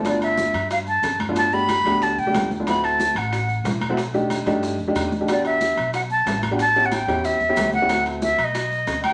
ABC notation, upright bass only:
X:1
M:4/4
L:1/8
Q:1/4=184
K:Dmix
V:1 name="Upright bass" clef=bass
G,,,3 G,,3 G,,2- | G,,3 D,,2 C,, D,,2- | D,,3 A,,,3 B,,,2- | B,,,3 G,,2 =F,, E,,2- |
E,,3 B,,,3 A,,,2- | A,,,3 E,,2 E,, D,,2- | D,,3 B,,,3 D,,2 |]